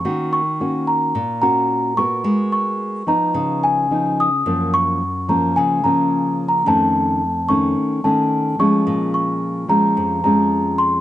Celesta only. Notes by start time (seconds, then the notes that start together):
Already playing: C#6
0.33 C#6
0.87 A#5
1.42 A#5
1.97 C#6
2.52 C#6
3.08 A#5
3.63 G#5
4.20 D#6
4.74 C#6
5.29 A#5
5.56 G#5
5.84 A#5
6.49 A#5
6.68 A5
7.49 C#6
8.04 A5
8.60 C#6
9.14 C#6
9.70 A#5
10.24 A#5
10.78 C6